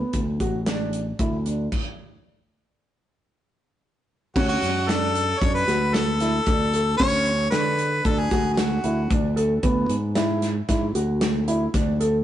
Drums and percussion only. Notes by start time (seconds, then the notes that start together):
0.13 kick, closed hi-hat
0.40 kick, closed hi-hat
0.66 snare, closed hi-hat
0.93 closed hi-hat
1.19 kick, closed hi-hat
1.46 closed hi-hat
1.72 kick, crash
4.36 kick, crash
4.62 snare, closed hi-hat
4.89 snare, closed hi-hat
5.15 closed hi-hat
5.42 kick, closed hi-hat
5.68 snare, closed hi-hat
5.94 snare, closed hi-hat
6.20 snare, closed hi-hat
6.46 kick, closed hi-hat
6.74 closed hi-hat
6.99 kick, closed hi-hat
7.26 closed hi-hat
7.52 snare, closed hi-hat
7.79 closed hi-hat
8.05 kick, closed hi-hat
8.31 kick, snare, closed hi-hat
8.57 snare, closed hi-hat
8.84 closed hi-hat
9.10 kick, closed hi-hat
9.37 closed hi-hat
9.63 kick, closed hi-hat
9.89 closed hi-hat
10.15 snare, closed hi-hat
10.42 snare, closed hi-hat
10.69 kick, snare, closed hi-hat
10.95 closed hi-hat
11.21 snare, closed hi-hat
11.48 closed hi-hat
11.74 kick, snare, closed hi-hat
12.01 closed hi-hat